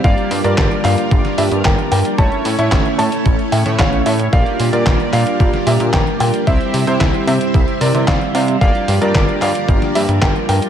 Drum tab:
HH |xxoxxxoxxxoxxxox|xxoxxxoxxxoxxxox|xxoxxxoxxxoxxxox|xxoxxxoxxxoxxxox|
CP |----x-x-----x---|----x-------x---|----x-x-----x---|----x-------x---|
SD |----o----o--o---|----o------oo---|----o----o--o---|----o------oo---|
BD |o---o---o---o---|o---o---o---o---|o---o---o---o---|o---o---o---o---|

HH |xxoxxxoxxxoxxxox|
CP |----x-x-----x---|
SD |----o----o--o---|
BD |o---o---o---o---|